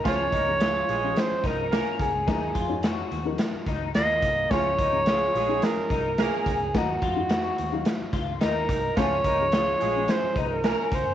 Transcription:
0.04 fingered electric bass C#2, upright piano F3 C#4 G#4, horn section F3 F4, clean electric guitar C#4, alto saxophone C#5, kick, snare, closed hi-hat
0.32 fingered electric bass C#2, horn section A#3 A#4, clean electric guitar D#4, kick, closed hi-hat
0.47 upright piano F3 C#4 G#4
0.60 horn section G#3 G#4, clean electric guitar F4, snare, closed hi-hat
0.88 fingered electric bass A#1, horn section G#3 G#4, closed hi-hat
1.03 upright piano F3 C#4 G4
1.10 upright piano G#4
1.16 alto saxophone C5, snare, closed hi-hat
1.31 muted fingered electric bass stroke
1.44 fingered electric bass C2, clean electric guitar D#4, alto saxophone A#4, kick, snare, closed hi-hat
1.71 horn section A#3 A#4, clean electric guitar C#4, snare, closed hi-hat
1.99 fingered electric bass C#2, alto saxophone G#4, kick, closed hi-hat
2.14 fingered electric bass C#2
2.27 fingered electric bass D#2, upright piano F#3 D#4 A#4, clean electric guitar D#4, kick, snare, closed hi-hat
2.55 fingered electric bass F2, clean electric guitar F4, kick, closed hi-hat
2.69 upright piano D#4 F#4 C#5
2.83 clean electric guitar F#4, snare, closed hi-hat
3.11 fingered electric bass D#2, closed hi-hat
3.25 upright piano F3 D#4 A#4
3.32 upright piano F#3
3.38 snare, closed hi-hat
3.53 muted fingered electric bass stroke
3.66 fingered electric bass C#2, clean electric guitar D#4, kick, snare, closed hi-hat
3.94 fingered electric bass D#2, clean electric guitar A#3, alto saxophone D#5, snare, closed hi-hat
4.22 fingered electric bass C2, kick, closed hi-hat
4.50 fingered electric bass C#2, upright piano F3 C#4 G#4, horn section F3 F4, clean electric guitar C#4, alto saxophone C#5, kick, snare, closed hi-hat
4.79 fingered electric bass C#2, horn section A#3 A#4, clean electric guitar D#4, kick, closed hi-hat
4.92 upright piano F3 C#4 G#4
5.06 horn section G#3 G#4, clean electric guitar F4, snare, closed hi-hat
5.34 fingered electric bass A#1, horn section G#3 G#4, closed hi-hat
5.48 upright piano F3 C#4 D#4
5.62 alto saxophone A#4, snare, closed hi-hat
5.77 muted fingered electric bass stroke
5.90 fingered electric bass C2, clean electric guitar D#4, kick, closed hi-hat
6.18 horn section A#3 A#4, clean electric guitar C#4, alto saxophone G#4, snare, closed hi-hat
6.46 fingered electric bass C#2, kick, closed hi-hat
6.60 fingered electric bass C#2
6.74 fingered electric bass D#2, upright piano F#3 D#4 A#4, clean electric guitar D#4, alto saxophone F#4, kick, snare, closed hi-hat
7.02 fingered electric bass F2, clean electric guitar F4, kick, closed hi-hat
7.16 upright piano D#3 D#4 F#4
7.29 clean electric guitar F#4, snare, closed hi-hat
7.58 fingered electric bass D#2, closed hi-hat
7.72 upright piano F#3 D#4 F5
7.85 snare, closed hi-hat
8.01 muted fingered electric bass stroke
8.13 fingered electric bass C#2, clean electric guitar F4, kick, snare, closed hi-hat
8.41 fingered electric bass D#2, clean electric guitar D#4, alto saxophone A#4, snare, closed hi-hat
8.69 fingered electric bass C2, kick, closed hi-hat
8.96 fingered electric bass C#2, horn section F3 F4, upright piano F3 C#4 G#4, clean electric guitar C#4, alto saxophone C#5, kick, snare, closed hi-hat
9.24 fingered electric bass C#2, horn section A#3 A#4, clean electric guitar D#4, kick, closed hi-hat
9.39 upright piano F3 C#4 G#4
9.52 horn section G#3 G#4, clean electric guitar F4, snare, closed hi-hat
9.80 fingered electric bass A#1, horn section G#3 G#4, closed hi-hat
9.96 upright piano F3 C#4 G#4
10.08 alto saxophone C5, snare, closed hi-hat
10.24 muted fingered electric bass stroke
10.36 fingered electric bass C2, clean electric guitar D#4, alto saxophone A#4, kick, closed hi-hat
10.63 horn section A#3 A#4, clean electric guitar C#4, snare, closed hi-hat
10.92 fingered electric bass C#2, alto saxophone C5, kick, closed hi-hat
11.06 fingered electric bass F#1

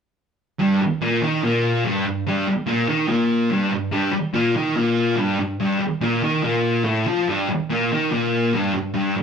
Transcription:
0.59 distorted electric guitar G2 G3
0.82 muted distorted electric guitar stroke
1.02 distorted electric guitar A#2 A#3
1.22 distorted electric guitar D#3 D#4
1.43 distorted electric guitar A#2 A#3
1.85 distorted electric guitar G2 G3
2.06 distorted electric guitar G2
2.26 distorted electric guitar G2 G3
2.48 muted distorted electric guitar stroke
2.67 distorted electric guitar A#2 A#3
2.88 distorted electric guitar D#3 D#4
3.08 distorted electric guitar A#2 A#3
3.50 distorted electric guitar G2 G3
3.72 distorted electric guitar G2
3.92 distorted electric guitar G2 G3
4.12 muted distorted electric guitar stroke
4.33 distorted electric guitar A#2 A#3
4.56 distorted electric guitar D#3 D#4
4.76 distorted electric guitar A#2 A#3
5.16 distorted electric guitar G2 G3
5.40 distorted electric guitar G2
5.60 distorted electric guitar G2 G3
5.80 muted distorted electric guitar stroke
6.01 distorted electric guitar A#2 A#3
6.22 distorted electric guitar D#3 D#4
6.43 distorted electric guitar A#2 A#3
6.84 distorted electric guitar A2 A3
7.07 distorted electric guitar F3 F4
7.28 distorted electric guitar G2 G3
7.50 muted distorted electric guitar stroke
7.70 distorted electric guitar A#2 A#3
7.92 distorted electric guitar D#3 D#4
8.11 distorted electric guitar A#2 A#3
8.53 distorted electric guitar G2 G3
8.74 distorted electric guitar G2
8.94 distorted electric guitar G2 G3
9.16 muted distorted electric guitar stroke

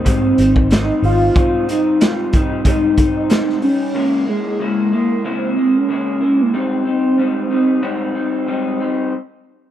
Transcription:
0.04 clean electric guitar G#2 G3 C4 D#4, fingered electric bass G#2, soft synth lead C4, kick, closed hi-hat
0.38 fingered electric bass G#1, clean electric guitar G3 C4 D#4, closed hi-hat
0.56 kick
0.70 clean electric guitar G#2 G3 C4 D#4, soft synth lead D#4, snare, closed hi-hat
1.02 fingered electric bass G#1, clean electric guitar G3 C4 D#4, soft synth lead F4, open hi-hat
1.35 clean electric guitar G#2 G3 C4 D#4, kick, closed hi-hat
1.67 clean electric guitar G3 C4 D#4, soft synth lead D#4, closed hi-hat
2.00 clean electric guitar G#2 G3 C4 D#4, soft synth lead F4, snare, closed hi-hat
2.33 clean electric guitar G3 C4 D#4, soft synth lead D#4, kick, closed hi-hat
2.65 clean electric guitar G#2 G3 C4 D#4, kick, closed hi-hat
2.97 clean electric guitar G3 C4 D#4, soft synth lead D#4, kick, closed hi-hat
3.29 clean electric guitar G#2 G3 C4 D#4, snare, closed hi-hat
3.49 snare
3.62 clean electric guitar G3 D#4, soft synth lead C#4, open hi-hat
3.95 clean electric guitar C#3 G#3 A#3 E4
4.27 clean electric guitar G#3 A#3 E4, soft synth lead G#3
4.59 clean electric guitar C#3 G#3 A#3 E4
4.92 clean electric guitar G#3 A#3 E4, soft synth lead A#3
5.24 clean electric guitar C#3 G#3 A#3 E4, soft synth lead C4
5.56 clean electric guitar G#3 A#3 E4
5.77 soft synth lead C#4
5.89 clean electric guitar C#3 G#3 A#3 E4
6.21 clean electric guitar G#3 A#3 E4
6.41 soft synth lead A#3
6.54 clean electric guitar G#2 G3 C4 D#4, soft synth lead C4
6.85 clean electric guitar G3 C4 D#4
7.18 clean electric guitar G#2 G3 C4 D#4
7.50 clean electric guitar G3 C4 D#4
7.82 clean electric guitar G#2 G3 C4 D#4
8.15 clean electric guitar G3 C4 D#4
8.47 clean electric guitar G#2 G3 C4 D#4
8.80 clean electric guitar G3 C4 D#4

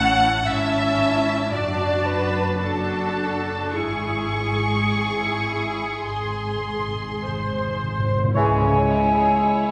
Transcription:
Already playing: double bass section A1, cello section A2, viola section C#4 E4, violin section F#5 A5
0.46 double bass section G#1, cello section G#2, viola section C#4 E4, violin section E5 A5
1.52 double bass section F#1, cello section F#2, viola section D4 F#4, violin section D5 A5
2.06 violin section B4
2.59 viola section D4 F#4, violin section A4 A5
3.72 double bass section G#1, cello section G#2, viola section E4 G#4, violin section G#4 C#6
4.92 viola section E4
6.07 double bass section G#1, cello section G#2, timpani G#2, viola section G#4, violin section C6
6.15 timpani G#2
6.23 timpani G#2
6.31 timpani G#2
6.55 timpani G#2
6.63 timpani G#2
6.72 timpani G#2
6.79 timpani G#2
6.88 timpani G#2
6.95 timpani G#2
7.03 timpani G#2
7.11 timpani G#2
7.20 timpani G#2, viola section C5
7.28 timpani G#2
7.36 timpani G#2
7.44 timpani G#2
7.52 timpani G#2
7.60 timpani G#2
7.68 timpani G#2
7.76 timpani G#2
7.84 timpani G#2
7.91 timpani G#2
8.00 timpani G#2
8.08 timpani G#2
8.15 timpani G#2
8.24 timpani G#2
8.35 double bass section C#2, timpani C#3, cello section C#3, bassoon E3, violin section G#3 C#5, french horn section G#3, viola section E4, clarinet G#4, cor anglais C#5, flute G#5
8.65 violin section C#4
8.91 violin section E4
9.17 violin section G#4
9.44 violin section E4

